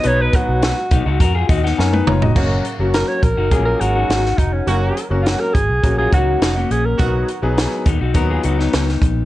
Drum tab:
CC |----------------|x---------------|----------------|----------------|
HH |x-x-x-x-x-x-----|--x-x-x-x-x-x-x-|x-x-x-x-x-x-x-x-|x-x-x-x-x-x-x-x-|
SD |----o------oo---|----o-------oo--|----o-------o---|----o------ooo--|
T1 |-------------o--|----------------|----------------|----------------|
T2 |--------------o-|----------------|----------------|----------------|
FT |---------------o|----------------|----------------|----------------|
BD |--o---o-o-o-----|o-----o-o-----o-|------o-o-o-----|o-----o-o-----o-|